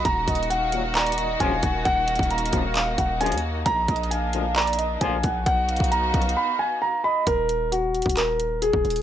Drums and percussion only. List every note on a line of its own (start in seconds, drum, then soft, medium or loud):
0.05 kick loud
0.05 closed hi-hat medium
0.28 kick medium
0.28 closed hi-hat medium
0.35 closed hi-hat medium
0.43 closed hi-hat soft
0.51 closed hi-hat medium
0.72 closed hi-hat medium
0.95 clap loud
0.95 closed hi-hat soft
1.01 closed hi-hat medium
1.06 closed hi-hat medium
1.12 closed hi-hat medium
1.18 closed hi-hat medium
1.40 kick medium
1.40 closed hi-hat medium
1.63 kick loud
1.63 closed hi-hat medium
1.85 kick loud
1.85 closed hi-hat medium
2.08 closed hi-hat soft
2.08 open hi-hat medium
2.15 kick loud
2.15 closed hi-hat medium
2.23 closed hi-hat medium
2.30 closed hi-hat medium
2.38 closed hi-hat medium
2.46 closed hi-hat medium
2.53 kick loud
2.53 closed hi-hat medium
2.75 clap loud
2.75 closed hi-hat medium
2.98 kick loud
2.98 closed hi-hat medium
3.21 closed hi-hat medium
3.26 closed hi-hat medium
3.32 closed hi-hat medium
3.38 closed hi-hat medium
3.66 kick loud
3.66 closed hi-hat medium
3.88 kick medium
3.88 closed hi-hat medium
3.96 closed hi-hat medium
4.03 closed hi-hat soft
4.11 closed hi-hat medium
4.33 closed hi-hat medium
4.56 clap loud
4.56 closed hi-hat soft
4.62 closed hi-hat medium
4.67 closed hi-hat medium
4.73 closed hi-hat medium
4.79 closed hi-hat medium
5.01 kick loud
5.01 closed hi-hat medium
5.23 kick loud
5.23 closed hi-hat medium
5.46 kick loud
5.46 closed hi-hat medium
5.69 closed hi-hat soft
5.69 open hi-hat medium
5.76 kick medium
5.76 closed hi-hat medium
5.84 closed hi-hat medium
5.92 closed hi-hat medium
6.14 kick loud
6.14 closed hi-hat medium
6.22 closed hi-hat medium
6.29 closed hi-hat medium
7.27 kick loud
7.27 closed hi-hat medium
7.49 closed hi-hat medium
7.72 closed hi-hat medium
7.95 closed hi-hat soft
8.02 kick medium
8.02 closed hi-hat medium
8.09 closed hi-hat medium
8.17 clap loud
8.17 closed hi-hat medium
8.40 closed hi-hat medium
8.62 closed hi-hat medium
8.73 kick loud
8.85 closed hi-hat soft
8.90 closed hi-hat soft
8.96 closed hi-hat medium